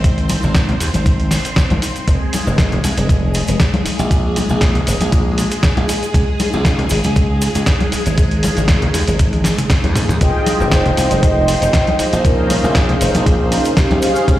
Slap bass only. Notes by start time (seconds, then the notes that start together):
Already playing: G#1
0.44 G#1
0.81 D#2
0.95 G#1
1.71 G#1
2.08 F1
2.47 F1
2.84 C2
2.98 F1
3.48 F1
3.86 muted slap bass stroke
3.99 A#1
4.50 A#1
4.87 F1
5.01 A#1
5.77 A#1
6.14 C#2
6.54 C#2
6.91 G#1
7.05 C#2
7.55 C#2
7.93 muted slap bass stroke
8.06 G#1
8.57 G#1
8.94 D#2
9.08 G#1
9.84 D#2
9.96 G#2
10.10 D#2
10.21 F1
10.61 F1
10.98 C2
11.11 F1
11.62 F1
12.00 muted slap bass stroke
12.13 A#1
12.64 A#1
13.01 F1
13.15 A#1
13.91 A#1
14.28 C#2